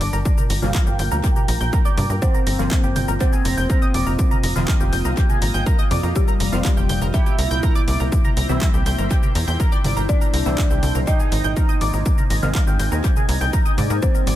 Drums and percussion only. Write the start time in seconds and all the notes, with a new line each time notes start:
0.01 open hi-hat
0.13 shaker
0.25 kick, shaker
0.38 mid tom, shaker
0.50 open hi-hat, shaker
0.62 mid tom, shaker
0.75 kick, clap, shaker
0.87 shaker
0.99 open hi-hat, shaker
1.11 shaker
1.24 kick, shaker
1.36 mid tom, shaker
1.48 open hi-hat, shaker
1.61 shaker
1.73 kick, shaker
1.85 shaker
1.98 mid tom, open hi-hat
2.10 shaker
2.22 kick, shaker
2.34 shaker
2.47 open hi-hat, shaker
2.59 shaker
2.71 kick, clap, shaker
2.84 shaker
2.96 mid tom, open hi-hat, shaker
3.08 shaker
3.20 kick, shaker
3.33 shaker
3.45 open hi-hat, shaker
3.57 shaker
3.70 kick, shaker
3.82 shaker
3.94 open hi-hat
4.07 shaker
4.19 kick, shaker
4.31 mid tom, shaker
4.43 open hi-hat, shaker
4.56 mid tom, shaker
4.68 kick, clap, shaker
4.80 shaker
4.93 open hi-hat, shaker
5.05 shaker
5.17 kick, shaker
5.30 mid tom, shaker
5.42 open hi-hat, shaker
5.54 shaker
5.66 kick, shaker
5.79 shaker
5.91 mid tom, open hi-hat
6.03 shaker
6.16 kick, shaker
6.28 shaker
6.40 open hi-hat, shaker
6.52 shaker
6.65 kick, clap, shaker
6.77 shaker
6.89 mid tom, open hi-hat, shaker
7.02 shaker
7.14 kick, shaker
7.26 shaker
7.39 open hi-hat, shaker
7.51 shaker
7.63 kick, shaker
7.75 shaker
7.88 open hi-hat
8.00 shaker
8.12 kick, shaker
8.25 mid tom, shaker
8.37 open hi-hat, shaker
8.49 mid tom, shaker
8.61 kick, clap, shaker
8.74 shaker
8.86 open hi-hat, shaker
8.98 shaker
9.11 kick, shaker
9.23 mid tom, shaker
9.35 open hi-hat, shaker
9.48 shaker
9.60 kick, shaker
9.72 shaker
9.84 mid tom, open hi-hat
9.97 shaker
10.09 kick, shaker
10.21 shaker
10.34 open hi-hat, shaker
10.46 shaker
10.58 kick, clap, shaker
10.70 shaker
10.83 mid tom, open hi-hat, shaker
10.95 shaker
11.07 kick, shaker
11.20 shaker
11.32 open hi-hat, shaker
11.44 shaker
11.56 kick, shaker
11.69 shaker
11.81 open hi-hat
11.93 shaker
12.06 kick, shaker
12.18 mid tom, shaker
12.30 open hi-hat, shaker
12.43 mid tom, shaker
12.55 kick, clap, shaker
12.67 shaker
12.79 open hi-hat, shaker
12.92 shaker
13.04 kick, shaker
13.16 mid tom, shaker
13.29 open hi-hat, shaker
13.41 shaker
13.53 kick, shaker
13.66 shaker
13.78 mid tom, open hi-hat, shaker
13.90 shaker
14.02 kick, shaker
14.15 shaker
14.27 open hi-hat, shaker